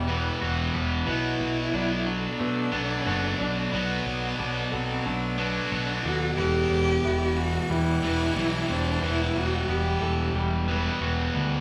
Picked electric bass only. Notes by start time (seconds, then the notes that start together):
Already playing: E1
0.42 E1
0.75 E1
1.07 B1
1.41 B1
1.74 B1
2.40 B2
2.73 B1
3.06 F#1
3.41 B1
3.73 B1
4.06 B1
4.40 B1
4.73 B1
5.07 B1
5.72 B1
6.05 D#2
6.38 E1
6.70 E1
7.04 E1
7.70 E2
8.03 E1
8.36 B1
8.70 E1
9.02 E1
9.36 E1
9.69 E1
10.01 E1
10.34 E1
11.01 E1
11.35 D2